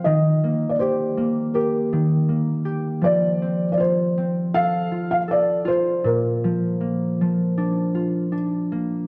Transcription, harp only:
X:1
M:4/4
L:1/8
Q:1/4=80
K:Bb
V:1 name="Harp"
E, B, G B, G E, B, G | F, C F C A F A F | B,, F, B, F, D F D B, |]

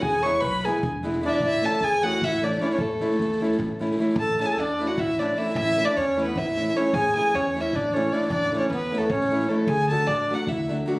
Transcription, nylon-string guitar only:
X:1
M:7/8
L:1/8
Q:1/4=152
K:A
V:1 name="Nylon-string guitar"
z [E,G,B,E] z [E,G,B,E] z [E,G,B,E] [E,G,B,E] | z [E,A,CE] z [E,A,CE] z [E,A,CE] [E,A,CE] | z [E,A,CE] z [E,A,CE] z [E,A,CE] [E,A,CE] | z [E,A,CE] z [E,A,CE] z [E,A,CE] [E,A,CE] |
z [E,A,CE] z [E,A,CE] z [E,A,CE] [E,A,CE] | z [E,A,CE] z [E,A,CE] z [E,A,CE] [E,A,CE] | z [E,A,CE] z [E,A,CE] z [E,A,CE] [E,A,CE] | z [F,A,DF] z [F,A,DF] z [F,A,DF] [F,A,DF] |]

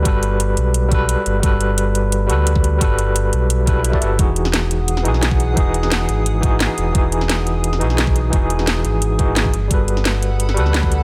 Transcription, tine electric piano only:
X:1
M:4/4
L:1/16
Q:1/4=174
K:E
V:1 name="Tine electric piano"
[=G,FAB]8- [G,FAB]2 [G,FAB]6 | [=G,FAB]8- [G,FAB]2 [G,FAB]6 | [=G,FAB]8- [G,FAB]2 [G,FAB]3 [G,FA=d] [G,FAB]2 | [E,DFG]8- [E,DFG]2 [E,DFG]6 |
[E,DFG]8- [E,DFG]2 [E,DFG]6 | [E,DFG]8- [E,DFG]2 [E,DFG]6 | [E,DFG]8- [E,DFG]2 [E,DFG]4 z2 | [=G,FAB]8- [G,FAB]2 [G,FAB]6 |]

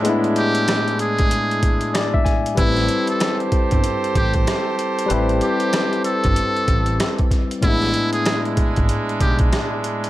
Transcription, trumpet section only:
X:1
M:4/4
L:1/8
Q:"Swing 16ths" 1/4=95
K:Am
V:1 name="Trumpet section"
[^G,DE]6- [G,DE] z | [GAc]8- | [GAc]6- [GAc] z | [^G,DE]8 |]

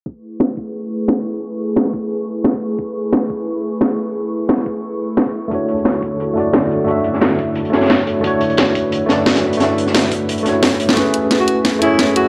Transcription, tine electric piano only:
X:1
M:4/4
L:1/8
Q:1/4=176
K:A
V:1 name="Tine electric piano"
z8 | z8 | z8 | z8 |
[A,DFc]4- [A,DFc] [A,DFd]3 | [A,DFe]4- [A,DFe] [A,DFc]3 | [A,DFc]4- [A,DFc] [A,DFd]3 | [A,DFe]4- [A,DFe] [A,DFc]3 |
[A,CGB]4- [A,CGB] [A,CGc]3 |]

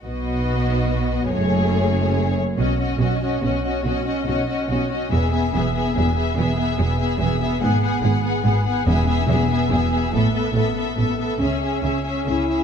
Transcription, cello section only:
X:1
M:3/4
L:1/8
Q:1/4=143
K:Bmix
V:1 name="Cello section" clef=bass
B,,6 | F,,4- F,, z | B,,2 B,,2 B,,2 | B,,2 B,,2 B,,2 |
E,,2 E,,2 E,,2 | E,,2 E,,2 E,,2 | G,,2 G,,2 G,,2 | E,,2 E,,2 E,,2 |
A,,2 A,,2 A,,2 | C,2 C,2 C,2 |]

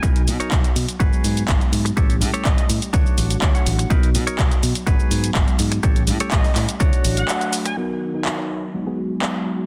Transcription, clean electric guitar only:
X:1
M:4/4
L:1/16
Q:1/4=124
K:B
V:1 name="Clean electric guitar"
[DAB]2 z [DAc]3 z2 [FGB]4 z4 | [=G=Ac]2 z [GAc]3 z2 [=DFc]4 =d f3 | [DAB]2 z [DAc]3 z2 [FGB]4 z4 | [=G=Ac]2 z [GAc]3 z2 [=DFc]4 z4 |
[B,DA]2 z [B,DA] z [B,Dc]2 z2 [B,FG] z2 [B,FG] z3 |]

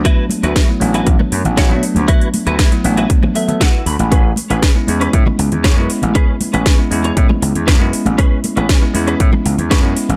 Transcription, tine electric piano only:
X:1
M:4/4
L:1/16
Q:1/4=118
K:A
V:1 name="Tine electric piano"
[F,A,B,D]4- [F,A,B,D] [F,A,B,E] [F,A,B,D]6- [F,A,B,D] [F,A,B,D]3- | [F,A,B,D]4- [F,A,B,D] [F,A,B,E] [F,A,B,D]4 [F,A,B,A] [F,A,B,A] z4 | z4 z [G,B,CE] [G,B,CE]6- [G,B,CE] [G,B,CE]3- | [G,B,CE]4- [G,B,CE] [G,B,CE] [G,B,CE]6- [G,B,CE] [G,B,CE]3- |
[G,B,CE]4- [G,B,CE] [G,B,CE] [G,B,CE]6- [G,B,CE] [G,B,CE]3 |]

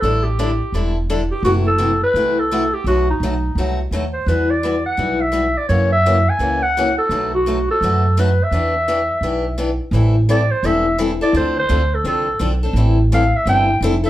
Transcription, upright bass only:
X:1
M:4/4
L:1/8
Q:"Swing" 1/4=170
K:Em
V:1 name="Upright bass" clef=bass
A,,,4 E,,,4 | F,,,4 C,,4 | B,,,2 B,,,2 C,,2 ^D,,2 | E,,4 B,,,4 |
F,,4 ^C,,4 | B,,,4 F,,4 | E,,4 B,,,4 | [K:Am] A,,,4 E,,,4 |
D,,2 D,,2 C,,2 B,,,2 | A,,,4 G,,,2 F,,,2 |]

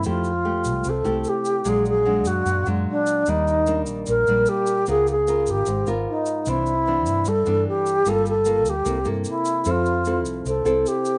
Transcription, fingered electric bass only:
X:1
M:4/4
L:1/8
Q:1/4=150
K:Flyd
V:1 name="Fingered electric bass" clef=bass
F,,3 C,, C,, C,, z2 | _B,,,3 ^F,, F,, F,, z2 | _E,,3 _B,,, B,,, B,,, z2 | _D,,3 _A,,, A,,, A,,, z2 |
C,,3 G,, G,, G,, z2 | G,,,3 D,, C,, G,, z2 | F,,3 C,, C,, C,, z2 |]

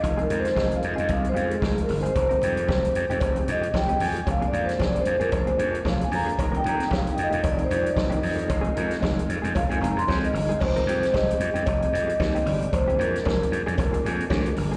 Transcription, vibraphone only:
X:1
M:4/4
L:1/16
Q:"Swing 16ths" 1/4=114
K:Fdor
V:1 name="Vibraphone"
(3e2 B2 c2 (3e2 f2 e2 (3f2 c2 A2- (3A2 B2 c2- | c8- c z e2 g2 a2 | (3f2 d2 c2 (3d2 c2 B2 c2 z2 f a b2- | b g b g f g e2 d c d e4- e- |
e4- e z3 f a b c'2 e3 | c4 e4 e6 d2 | c2 z12 z2 |]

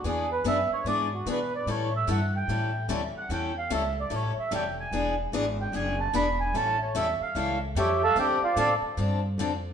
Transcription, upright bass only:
X:1
M:4/4
L:1/8
Q:"Swing" 1/4=148
K:Aphr
V:1 name="Upright bass" clef=bass
E,,2 ^F,, z ^G,,2 =B,,2 | A,,2 G,,2 A,,2 D,, z | E,,2 ^C,,2 A,,, z F,,,2 | E,,,2 ^G,,,2 ^F,,,2 E,,,2 |
A,,,2 E,, z ^C,,2 F,,2 | D,, z A,, z G,,2 F,,2 |]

